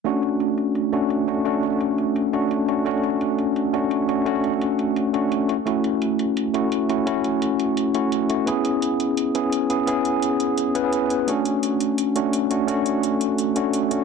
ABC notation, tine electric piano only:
X:1
M:4/4
L:1/16
Q:"Swing 16ths" 1/4=171
K:Dlyd
V:1 name="Tine electric piano"
[A,CDF]8- [A,CDF]2 [A,CDF]4 [A,CDF] z | [A,CDF]8- [A,CDF]2 [A,CDF]4 [A,CDF] z | [A,CDF]8- [A,CDF]2 [A,CDF]4 [A,CDF] z | [A,CDF]8- [A,CDF]2 [A,CDF]4 [A,CEF] z |
[A,CEF]8- [A,CEF]2 [A,CEF]4 [A,CEF] z | [A,CEF]8- [A,CEF]2 [A,CEF]4 [A,CEF] z | [B,CEG]8- [B,CEG]2 [B,CEG]4 [B,CEG] z | [B,CEG]8- [B,CEG]2 [B,CEB] [B,CEG]4- [B,CEG] |
[A,CDF]8- [A,CDF]2 [A,CDF]4 [A,CDF] z | [A,CDF]8- [A,CDF]2 [A,CDF]4 [A,CDF] z |]